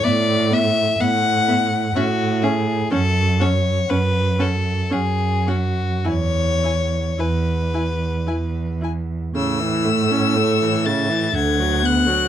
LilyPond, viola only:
\new Staff \with { instrumentName = "Viola" } { \time 3/4 \key a \major \tempo 4 = 61 b8 b8 b8 b8 cis'8 cis'8 | cis'8 cis'8 cis'8 cis'8 cis'8 cis'8 | e'8 e'8 e'8 e'8 e'8 e'8 | cis16 e16 a16 cis'16 a16 e16 cis16 e16 d16 fis16 b16 fis16 | }